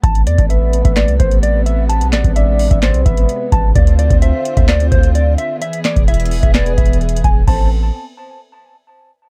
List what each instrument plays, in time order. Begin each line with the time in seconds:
0.03 808-style bass A1, string section C3 A3 B3, clean electric guitar A5, kick, closed hi-hat
0.15 closed hi-hat
0.27 808-style bass E2, clean electric guitar D5, closed hi-hat
0.38 808-style bass A1, kick, closed hi-hat
0.50 soft synth lead B4, clean electric guitar E5, closed hi-hat
0.73 closed hi-hat
0.85 808-style bass A1, clean electric guitar E5, kick, closed hi-hat
0.96 clean electric guitar D5, snare, clap, closed hi-hat
1.08 808-style bass C2, closed hi-hat
1.20 808-style bass A1, clean electric guitar C5, kick, closed hi-hat
1.31 closed hi-hat
1.43 clean electric guitar D5, closed hi-hat
1.66 clean electric guitar E5, closed hi-hat
1.89 string section G#3, clean electric guitar A5, closed hi-hat
2.01 808-style bass B1, closed hi-hat
2.13 808-style bass A1, clean electric guitar D5, snare, clap, closed hi-hat
2.24 808-style bass A1, kick, closed hi-hat
2.36 soft synth lead D5, clean electric guitar E5, closed hi-hat
2.59 open hi-hat
2.71 808-style bass A1, clean electric guitar E5, kick, closed hi-hat
2.83 soft synth lead C5, clean electric guitar D5, snare, clap, closed hi-hat
2.94 808-style bass B1, closed hi-hat
3.06 808-style bass A1, soft synth lead B4, clean electric guitar E5, kick, closed hi-hat
3.17 closed hi-hat
3.29 closed hi-hat
3.52 808-style bass A1, clean electric guitar A5, kick, closed hi-hat
3.75 808-style bass D2, string section D3 C4 F4, clean electric guitar D5, kick, closed hi-hat
3.87 closed hi-hat
3.99 clean electric guitar D5, closed hi-hat
4.10 808-style bass D2, kick, closed hi-hat
4.22 soft synth lead C5, clean electric guitar E5, closed hi-hat
4.45 closed hi-hat
4.57 808-style bass D2, clean electric guitar E5, kick, closed hi-hat
4.68 clean electric guitar D5, snare, clap, closed hi-hat
4.80 closed hi-hat
4.92 808-style bass D2, clean electric guitar C5, kick, closed hi-hat
5.03 closed hi-hat
5.15 clean electric guitar D5, closed hi-hat
5.38 clean electric guitar E5, closed hi-hat
5.62 string section E3 B3 G#4, clean electric guitar E5, closed hi-hat
5.73 closed hi-hat
5.85 clean electric guitar D5, snare, clap, closed hi-hat
5.96 808-style bass E1, kick, closed hi-hat
6.08 clean electric guitar E5, soft synth lead E5, closed hi-hat
6.14 closed hi-hat
6.20 closed hi-hat
6.25 closed hi-hat
6.31 open hi-hat
6.43 808-style bass E1, clean electric guitar E5, kick, closed hi-hat
6.54 soft synth lead B4, clean electric guitar D5, snare, clap, closed hi-hat
6.66 closed hi-hat
6.78 808-style bass E1, clean electric guitar E5, kick, closed hi-hat
6.86 closed hi-hat
6.93 closed hi-hat
7.01 closed hi-hat
7.09 closed hi-hat
7.16 closed hi-hat
7.24 808-style bass E1, clean electric guitar G#5, kick, closed hi-hat
7.48 808-style bass A1, string section B3 C4 A4, soft synth lead C5, clean electric guitar A5, kick, crash